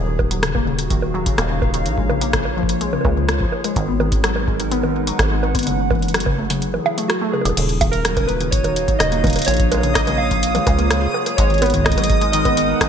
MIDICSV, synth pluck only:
0, 0, Header, 1, 2, 480
1, 0, Start_track
1, 0, Key_signature, -6, "minor"
1, 0, Tempo, 476190
1, 1873, Time_signature, 4, 2, 24, 8
1, 12990, End_track
2, 0, Start_track
2, 0, Title_t, "Synth pluck"
2, 0, Program_c, 0, 84
2, 72, Note_on_c, 0, 51, 71
2, 112, Note_off_c, 0, 51, 0
2, 311, Note_on_c, 0, 54, 78
2, 378, Note_off_c, 0, 54, 0
2, 431, Note_on_c, 0, 49, 79
2, 498, Note_off_c, 0, 49, 0
2, 552, Note_on_c, 0, 58, 79
2, 619, Note_off_c, 0, 58, 0
2, 672, Note_on_c, 0, 49, 72
2, 739, Note_off_c, 0, 49, 0
2, 912, Note_on_c, 0, 51, 85
2, 952, Note_off_c, 0, 51, 0
2, 1151, Note_on_c, 0, 54, 80
2, 1218, Note_off_c, 0, 54, 0
2, 1272, Note_on_c, 0, 49, 77
2, 1339, Note_off_c, 0, 49, 0
2, 1391, Note_on_c, 0, 58, 82
2, 1458, Note_off_c, 0, 58, 0
2, 1511, Note_on_c, 0, 49, 76
2, 1579, Note_off_c, 0, 49, 0
2, 1751, Note_on_c, 0, 51, 76
2, 1792, Note_off_c, 0, 51, 0
2, 1992, Note_on_c, 0, 56, 73
2, 2059, Note_off_c, 0, 56, 0
2, 2112, Note_on_c, 0, 49, 79
2, 2178, Note_off_c, 0, 49, 0
2, 2232, Note_on_c, 0, 58, 79
2, 2299, Note_off_c, 0, 58, 0
2, 2352, Note_on_c, 0, 49, 82
2, 2418, Note_off_c, 0, 49, 0
2, 2591, Note_on_c, 0, 53, 75
2, 2632, Note_off_c, 0, 53, 0
2, 2832, Note_on_c, 0, 56, 84
2, 2899, Note_off_c, 0, 56, 0
2, 2952, Note_on_c, 0, 49, 76
2, 3019, Note_off_c, 0, 49, 0
2, 3072, Note_on_c, 0, 58, 76
2, 3139, Note_off_c, 0, 58, 0
2, 3192, Note_on_c, 0, 49, 79
2, 3259, Note_off_c, 0, 49, 0
2, 3432, Note_on_c, 0, 53, 73
2, 3472, Note_off_c, 0, 53, 0
2, 3672, Note_on_c, 0, 56, 76
2, 3739, Note_off_c, 0, 56, 0
2, 3792, Note_on_c, 0, 51, 85
2, 3859, Note_off_c, 0, 51, 0
2, 3912, Note_on_c, 0, 59, 72
2, 3979, Note_off_c, 0, 59, 0
2, 4032, Note_on_c, 0, 51, 76
2, 4099, Note_off_c, 0, 51, 0
2, 4272, Note_on_c, 0, 54, 82
2, 4312, Note_off_c, 0, 54, 0
2, 4511, Note_on_c, 0, 56, 77
2, 4578, Note_off_c, 0, 56, 0
2, 4632, Note_on_c, 0, 51, 76
2, 4699, Note_off_c, 0, 51, 0
2, 4752, Note_on_c, 0, 59, 82
2, 4819, Note_off_c, 0, 59, 0
2, 4872, Note_on_c, 0, 51, 74
2, 4939, Note_off_c, 0, 51, 0
2, 5113, Note_on_c, 0, 54, 78
2, 5152, Note_off_c, 0, 54, 0
2, 5352, Note_on_c, 0, 56, 74
2, 5419, Note_off_c, 0, 56, 0
2, 5472, Note_on_c, 0, 51, 74
2, 5539, Note_off_c, 0, 51, 0
2, 5592, Note_on_c, 0, 59, 76
2, 5659, Note_off_c, 0, 59, 0
2, 5712, Note_on_c, 0, 49, 86
2, 5779, Note_off_c, 0, 49, 0
2, 5953, Note_on_c, 0, 52, 79
2, 5992, Note_off_c, 0, 52, 0
2, 6193, Note_on_c, 0, 54, 81
2, 6259, Note_off_c, 0, 54, 0
2, 6312, Note_on_c, 0, 49, 78
2, 6379, Note_off_c, 0, 49, 0
2, 6433, Note_on_c, 0, 57, 74
2, 6499, Note_off_c, 0, 57, 0
2, 6552, Note_on_c, 0, 49, 79
2, 6619, Note_off_c, 0, 49, 0
2, 6793, Note_on_c, 0, 52, 71
2, 6833, Note_off_c, 0, 52, 0
2, 7033, Note_on_c, 0, 57, 80
2, 7132, Note_off_c, 0, 57, 0
2, 7273, Note_on_c, 0, 57, 99
2, 7339, Note_off_c, 0, 57, 0
2, 7393, Note_on_c, 0, 49, 75
2, 7459, Note_off_c, 0, 49, 0
2, 7633, Note_on_c, 0, 49, 84
2, 7699, Note_off_c, 0, 49, 0
2, 7872, Note_on_c, 0, 51, 75
2, 7912, Note_off_c, 0, 51, 0
2, 8113, Note_on_c, 0, 54, 86
2, 8179, Note_off_c, 0, 54, 0
2, 8233, Note_on_c, 0, 49, 76
2, 8299, Note_off_c, 0, 49, 0
2, 8352, Note_on_c, 0, 58, 73
2, 8419, Note_off_c, 0, 58, 0
2, 8472, Note_on_c, 0, 49, 78
2, 8539, Note_off_c, 0, 49, 0
2, 8712, Note_on_c, 0, 51, 73
2, 8752, Note_off_c, 0, 51, 0
2, 8952, Note_on_c, 0, 54, 77
2, 9019, Note_off_c, 0, 54, 0
2, 9073, Note_on_c, 0, 49, 82
2, 9139, Note_off_c, 0, 49, 0
2, 9192, Note_on_c, 0, 58, 76
2, 9259, Note_off_c, 0, 58, 0
2, 9312, Note_on_c, 0, 49, 77
2, 9379, Note_off_c, 0, 49, 0
2, 9552, Note_on_c, 0, 53, 86
2, 9592, Note_off_c, 0, 53, 0
2, 9793, Note_on_c, 0, 56, 78
2, 9859, Note_off_c, 0, 56, 0
2, 9913, Note_on_c, 0, 49, 76
2, 9979, Note_off_c, 0, 49, 0
2, 10033, Note_on_c, 0, 58, 86
2, 10099, Note_off_c, 0, 58, 0
2, 10153, Note_on_c, 0, 49, 78
2, 10219, Note_off_c, 0, 49, 0
2, 10392, Note_on_c, 0, 53, 80
2, 10432, Note_off_c, 0, 53, 0
2, 10632, Note_on_c, 0, 56, 76
2, 10699, Note_off_c, 0, 56, 0
2, 10752, Note_on_c, 0, 49, 78
2, 10819, Note_off_c, 0, 49, 0
2, 10872, Note_on_c, 0, 58, 77
2, 10939, Note_off_c, 0, 58, 0
2, 10992, Note_on_c, 0, 49, 85
2, 11058, Note_off_c, 0, 49, 0
2, 11231, Note_on_c, 0, 54, 77
2, 11272, Note_off_c, 0, 54, 0
2, 11472, Note_on_c, 0, 56, 89
2, 11539, Note_off_c, 0, 56, 0
2, 11592, Note_on_c, 0, 51, 74
2, 11659, Note_off_c, 0, 51, 0
2, 11712, Note_on_c, 0, 59, 78
2, 11779, Note_off_c, 0, 59, 0
2, 11832, Note_on_c, 0, 51, 78
2, 11899, Note_off_c, 0, 51, 0
2, 12072, Note_on_c, 0, 54, 77
2, 12112, Note_off_c, 0, 54, 0
2, 12312, Note_on_c, 0, 56, 76
2, 12379, Note_off_c, 0, 56, 0
2, 12432, Note_on_c, 0, 51, 83
2, 12499, Note_off_c, 0, 51, 0
2, 12552, Note_on_c, 0, 59, 74
2, 12619, Note_off_c, 0, 59, 0
2, 12672, Note_on_c, 0, 51, 77
2, 12739, Note_off_c, 0, 51, 0
2, 12912, Note_on_c, 0, 54, 83
2, 12952, Note_off_c, 0, 54, 0
2, 12990, End_track
0, 0, End_of_file